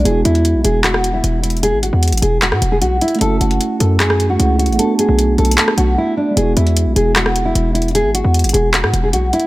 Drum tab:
HH |x-----------x-----x-----x-----------x-----------x-----------x-----------x-----------x---x---x---|x-----------x-----------x--x--x--x--x-----------x-----------x-----------x-----------x---x---x---|x-----------x-----x-----x-----------x-----------x-----------x-----------x-----------x---x---x---|x-----------x-----------x-----------x---x---x---x-----------x-----------------------------------|
CP |------------------------------------------------x-----------------------------------------------|------------------------------------------------x-----------------------------------------------|------------------------------------------------x-----------------------------------------------|------------------------------------------------x-----------------------------------------------|
SD |------------------------------------------------r-----r-----------------------------------------|------------------------------------------------r-----r-----------------------------------------|------------------------------------------------r-----r-----------------------------------------|------------------------------------------------------r-----------------------------------------|

HH |x-----------x-----x-----x-----------x-----------x-----------x-----------x-----------x---x---x---|x-----------x-----------x--x--x--x--x-----------x-----------x-----------x-----------x---x-------|
CP |------------------------------------------------x-----------------------------------------------|------------------------------------------------x-----------------------------------------------|
SD |------------------------------------------------r-----r-----------------------------------------|------------------------------------------------r-----r-----------------------------------------|